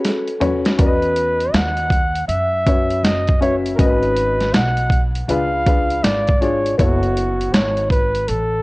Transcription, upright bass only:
0, 0, Header, 1, 2, 480
1, 0, Start_track
1, 0, Tempo, 750000
1, 506, Time_signature, 4, 2, 24, 8
1, 5519, End_track
2, 0, Start_track
2, 0, Title_t, "Upright bass"
2, 0, Program_c, 0, 32
2, 505, Note_on_c, 0, 40, 86
2, 961, Note_off_c, 0, 40, 0
2, 984, Note_on_c, 0, 39, 94
2, 1441, Note_off_c, 0, 39, 0
2, 1462, Note_on_c, 0, 42, 92
2, 1919, Note_off_c, 0, 42, 0
2, 1942, Note_on_c, 0, 30, 83
2, 2399, Note_off_c, 0, 30, 0
2, 2426, Note_on_c, 0, 32, 98
2, 2882, Note_off_c, 0, 32, 0
2, 2903, Note_on_c, 0, 35, 86
2, 3360, Note_off_c, 0, 35, 0
2, 3382, Note_on_c, 0, 37, 97
2, 3840, Note_off_c, 0, 37, 0
2, 3863, Note_on_c, 0, 32, 87
2, 4320, Note_off_c, 0, 32, 0
2, 4346, Note_on_c, 0, 30, 102
2, 4802, Note_off_c, 0, 30, 0
2, 4822, Note_on_c, 0, 32, 90
2, 5279, Note_off_c, 0, 32, 0
2, 5303, Note_on_c, 0, 33, 96
2, 5519, Note_off_c, 0, 33, 0
2, 5519, End_track
0, 0, End_of_file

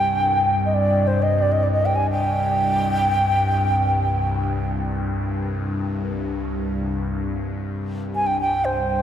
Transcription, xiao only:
0, 0, Header, 1, 2, 480
1, 0, Start_track
1, 0, Tempo, 500000
1, 8660, End_track
2, 0, Start_track
2, 0, Title_t, "Xiao"
2, 0, Program_c, 0, 77
2, 0, Note_on_c, 0, 79, 86
2, 592, Note_off_c, 0, 79, 0
2, 630, Note_on_c, 0, 75, 51
2, 711, Note_on_c, 0, 74, 72
2, 725, Note_off_c, 0, 75, 0
2, 1030, Note_on_c, 0, 72, 69
2, 1045, Note_off_c, 0, 74, 0
2, 1174, Note_on_c, 0, 75, 68
2, 1188, Note_off_c, 0, 72, 0
2, 1329, Note_on_c, 0, 74, 66
2, 1344, Note_off_c, 0, 75, 0
2, 1457, Note_on_c, 0, 75, 68
2, 1472, Note_off_c, 0, 74, 0
2, 1567, Note_on_c, 0, 74, 66
2, 1582, Note_off_c, 0, 75, 0
2, 1647, Note_off_c, 0, 74, 0
2, 1653, Note_on_c, 0, 75, 67
2, 1781, Note_on_c, 0, 79, 72
2, 1795, Note_off_c, 0, 75, 0
2, 1876, Note_on_c, 0, 80, 73
2, 1891, Note_off_c, 0, 79, 0
2, 2017, Note_off_c, 0, 80, 0
2, 2023, Note_on_c, 0, 79, 86
2, 4536, Note_off_c, 0, 79, 0
2, 7828, Note_on_c, 0, 80, 85
2, 7935, Note_on_c, 0, 79, 80
2, 7949, Note_off_c, 0, 80, 0
2, 8063, Note_off_c, 0, 79, 0
2, 8072, Note_on_c, 0, 79, 79
2, 8303, Note_on_c, 0, 72, 80
2, 8318, Note_off_c, 0, 79, 0
2, 8660, Note_off_c, 0, 72, 0
2, 8660, End_track
0, 0, End_of_file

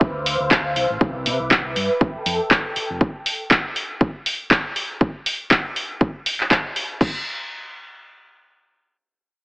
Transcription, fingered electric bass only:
0, 0, Header, 1, 3, 480
1, 0, Start_track
1, 0, Tempo, 500000
1, 969, Time_signature, 4, 2, 24, 8
1, 9069, End_track
2, 0, Start_track
2, 0, Title_t, "Fingered electric bass"
2, 0, Program_c, 0, 33
2, 8, Note_on_c, 0, 38, 95
2, 345, Note_off_c, 0, 38, 0
2, 383, Note_on_c, 0, 38, 71
2, 700, Note_off_c, 0, 38, 0
2, 731, Note_on_c, 0, 36, 78
2, 840, Note_off_c, 0, 36, 0
2, 863, Note_on_c, 0, 33, 85
2, 951, Note_off_c, 0, 33, 0
2, 970, Note_on_c, 0, 36, 90
2, 1209, Note_on_c, 0, 48, 74
2, 1223, Note_off_c, 0, 36, 0
2, 1319, Note_off_c, 0, 48, 0
2, 1342, Note_on_c, 0, 36, 80
2, 1659, Note_off_c, 0, 36, 0
2, 1690, Note_on_c, 0, 43, 75
2, 1800, Note_off_c, 0, 43, 0
2, 2168, Note_on_c, 0, 41, 86
2, 2279, Note_off_c, 0, 41, 0
2, 2783, Note_on_c, 0, 29, 72
2, 2871, Note_off_c, 0, 29, 0
2, 9069, End_track
3, 0, Start_track
3, 0, Title_t, "Muted fingered electric bass strokes"
3, 2064, Note_on_c, 9, 29, 41
3, 2160, Note_off_c, 9, 29, 0
3, 2650, Note_on_c, 9, 29, 38
3, 2746, Note_off_c, 9, 29, 0
3, 9069, End_track
0, 0, End_of_file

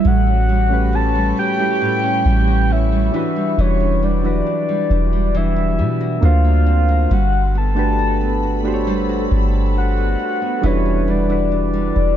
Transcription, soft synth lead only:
0, 0, Header, 1, 2, 480
1, 0, Start_track
1, 0, Tempo, 882353
1, 25, Time_signature, 4, 2, 24, 8
1, 6619, End_track
2, 0, Start_track
2, 0, Title_t, "Soft synth lead"
2, 0, Program_c, 0, 80
2, 38, Note_on_c, 0, 78, 123
2, 517, Note_on_c, 0, 81, 119
2, 525, Note_off_c, 0, 78, 0
2, 751, Note_off_c, 0, 81, 0
2, 756, Note_on_c, 0, 79, 125
2, 1479, Note_on_c, 0, 76, 112
2, 1487, Note_off_c, 0, 79, 0
2, 1960, Note_on_c, 0, 73, 103
2, 1968, Note_off_c, 0, 76, 0
2, 2197, Note_on_c, 0, 74, 112
2, 2206, Note_off_c, 0, 73, 0
2, 2919, Note_on_c, 0, 76, 111
2, 2927, Note_off_c, 0, 74, 0
2, 3392, Note_off_c, 0, 76, 0
2, 3401, Note_on_c, 0, 77, 107
2, 3879, Note_on_c, 0, 78, 106
2, 3887, Note_off_c, 0, 77, 0
2, 4112, Note_off_c, 0, 78, 0
2, 4121, Note_on_c, 0, 81, 104
2, 4812, Note_off_c, 0, 81, 0
2, 5318, Note_on_c, 0, 78, 103
2, 5798, Note_on_c, 0, 73, 98
2, 5806, Note_off_c, 0, 78, 0
2, 6038, Note_on_c, 0, 74, 103
2, 6046, Note_off_c, 0, 73, 0
2, 6619, Note_off_c, 0, 74, 0
2, 6619, End_track
0, 0, End_of_file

